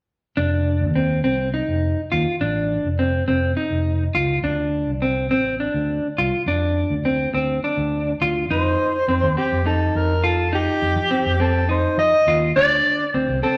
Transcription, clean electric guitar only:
0.37 0.84 D4 medium
0.96 1.19 C4 medium
1.24 1.47 C4 medium
1.54 2.00 D#4 medium
2.12 2.35 F4 medium
2.41 2.87 D4 medium
2.99 3.22 C4 medium
3.28 3.51 C4 medium
3.57 4.03 D#4 medium
4.15 4.38 F4 medium
4.44 4.90 D4 medium
5.02 5.25 C4 medium
5.31 5.54 C4 medium
5.60 6.06 D4 medium
6.18 6.42 F4 medium
6.48 6.94 D4 medium
7.05 7.28 C4 medium
7.35 7.58 C4 medium
7.64 8.10 D4 medium
8.22 8.45 F4 medium
8.51 8.97 D#4 medium
9.08 9.32 C4 medium
9.37 9.60 C4 medium
9.66 10.13 D#4 medium
10.24 10.47 F4 medium
10.53 10.99 D#4 medium
11.11 11.34 C4 medium
11.40 11.63 C4 medium
11.69 12.15 D#4 medium
12.28 12.51 F4 medium
12.56 13.03 D4 medium
13.14 13.38 C4 medium
13.43 13.57 C4 medium

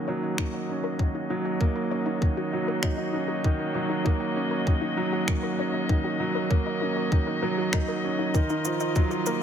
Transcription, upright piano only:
0.00 1.00 D#3 medium
0.00 0.08 F#3 medium
0.00 1.61 A#3 medium
0.00 0.70 C#4 medium
0.08 0.37 F#3 medium
0.70 0.99 C#4 medium
1.00 1.29 D#3 medium
1.30 1.60 F#3 medium
1.61 1.79 A#3 medium
1.92 2.21 C#4 medium
2.22 2.52 D#3 medium
2.53 2.82 F#3 medium
2.83 3.01 D#4 medium
3.14 3.32 C#4 medium
3.45 3.62 D#3 medium
3.75 4.04 F#3 medium
4.06 4.24 A#3 medium
4.36 4.66 C#4 medium
4.67 4.96 D#3 medium
4.97 5.27 F#3 medium
5.28 5.46 A#3 medium
5.59 5.88 C#4 medium
5.89 6.19 D#3 medium
6.20 6.49 F#3 medium
6.51 6.68 A#3 medium
6.81 7.11 C#4 medium
7.12 7.41 D#3 medium
7.42 7.72 F#3 medium
7.74 7.91 D#4 medium
8.04 8.22 C#4 medium
8.35 8.52 D#3 medium
8.66 8.95 F3 medium
8.96 9.13 F#3 medium
9.27 9.43 A#3 medium

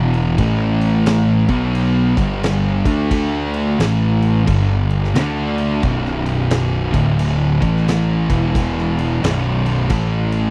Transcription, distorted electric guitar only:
0.00 0.37 E2 medium
0.00 0.38 B2 loud
0.00 0.38 E3 loud
0.38 1.47 A2 loud
0.38 1.48 E3 loud
0.38 1.48 A3 loud
1.49 2.16 B2 medium
1.49 2.16 F#3 medium
1.49 2.16 B3 medium
2.18 2.84 G2 medium
2.18 2.84 D3 medium
2.18 2.84 G3 loud
2.86 3.78 D3 medium
2.86 3.78 A3 medium
2.86 3.79 D4 loud
3.79 4.46 A2 medium
3.79 4.47 E3 medium
3.79 4.48 A3 loud
4.46 5.14 G2 medium
4.46 5.13 D3 loud
4.46 5.16 G3 loud
5.15 5.82 D3 medium
5.15 5.83 A3 loud
5.15 5.83 D4 loud
5.83 6.92 B1 loud
5.83 6.93 F#2 loud
5.83 6.93 B2 loud
6.93 7.60 D2 medium
6.93 7.61 A2 medium
6.93 7.61 D3 loud
7.62 8.28 A2 medium
7.62 8.29 E3 loud
7.62 8.29 A3 loud
8.30 9.22 E2 loud
8.30 9.22 B2 medium
8.30 9.23 E3 loud
9.23 9.88 B1 medium
9.23 9.89 F#2 loud
9.23 9.90 B2 loud
9.89 10.50 A2 medium
9.89 10.50 E3 medium
9.89 10.50 A3 loud

